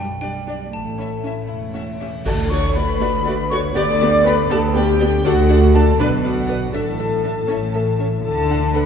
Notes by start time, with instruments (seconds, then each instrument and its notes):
Already playing: double bass section B1, harp B2 D5, xylophone G5
0.09 harp D4
0.21 cello section G3, viola section D4, harp G4, violin section G4 D5, xylophone G5
0.34 harp D5
0.46 viola section D4, harp G4, violin section G4 D5
0.60 harp G5
0.73 double bass section A1, harp A2, cello section A3, xylophone A5
0.85 harp C#4
0.97 viola section C#4, violin section E4 E5, harp E4
1.11 harp E5
1.23 viola section C#4, violin section E4 E5, harp C#5
1.37 harp E5
1.48 double bass section E1, violin section E4, harp E6
1.62 harp C#5
1.73 viola section C#4, violin section F#4 E5, harp E5
1.88 harp E4
2.00 viola section C#4, harp C#4, violin section G4 E5
2.13 harp E3
2.25 cello section D2, double bass section D2, harp D3, viola section A3 F#4, french horn section A4, clarinet A4, violin section D5 A5, flute A5, concert bass drum, crash
2.39 harp A3
2.50 viola section A3 F#4, harp D4, french horn section C#5, clarinet C#5, violin section D5 C#6, flute C#6
2.64 harp F#4
2.75 viola section A3 F#4, french horn section B4, clarinet B4, harp D5, violin section D5 B5, flute B5
2.88 harp F#4
3.00 cello section D2, double bass section D2, viola section A3 F#4, violin section D5, harp F#5
3.13 harp D6
3.25 viola section A3 F#4, violin section D5, harp F#5
3.38 harp D5
3.50 viola section A3 F#4, harp F#4, french horn section C#5, clarinet C#5, violin section D5 C#6, flute C#6
3.63 harp A3
3.75 cello section D2, double bass section D2, harp D3, viola section B3 G4, french horn section D5, clarinet D5, violin section D5 D6, flute D6
3.87 harp B3
4.00 viola section B3 G4, harp D4, violin section D5
4.24 viola section B3 G4, french horn section B4, harp B4, clarinet B4, violin section D5 B5, flute B5
4.49 double bass section D2, cello section D2, viola section B3 G4, clarinet A4, french horn section A4, violin section D5 A5, harp G5, flute A5
4.61 harp B5
4.74 viola section B3 G4, french horn section G4, clarinet G4, violin section D5 G5, harp G5, flute G5
4.87 harp D5
5.00 viola section B3 G4, violin section D5
5.12 harp B3
5.24 cello section D2, double bass section D2, harp D3, viola section D4 A4, clarinet F#4, french horn section F#4, violin section D5 F#5, flute F#5
5.37 harp A3
5.49 harp D4, viola section D4 A4, violin section D5
5.61 harp F#4
5.74 viola section D4 A4, harp A4, clarinet A4, french horn section A4, violin section D5 A5, flute A5
5.86 harp D5
5.98 double bass section B1, harp B2, cello section B2, viola section D4 B4, french horn section B4, clarinet B4, violin section D5 B5, flute B5
6.11 harp F#3
6.23 harp D4, viola section D4 B4, french horn section F#4, clarinet F#4, violin section D5 F#5, flute F#5
6.48 viola section D4 B4, harp B4, violin section D5
6.62 harp D5
6.73 double bass section A1, harp A2, cello section A2, viola section D4 A4, french horn section A4, clarinet A4, violin section E5 A5, flute A5
6.86 harp E3
6.98 harp A3, viola section D4 A4, violin section E5
7.11 harp D4
7.23 viola section D4 A4, harp E4, violin section E5
7.36 harp A4
7.48 double bass section A1, harp A2, cello section A2, viola section C#4 A4, violin section E5
7.62 harp E3
7.73 harp A3, viola section C#4 A4, violin section E5
7.87 harp C#4
7.99 viola section C#4 A4, harp E4, violin section E5
8.13 harp A4
8.24 double bass section D2, cello section D3, harp D3, french horn section A4, clarinet A4, violin section A5, flute A5
8.38 harp A3
8.50 viola section D4 A4, violin section F#5
8.63 harp F#4
8.74 viola section D4 A4, harp A4, french horn section B4, clarinet B4, violin section F#5 B5, flute B5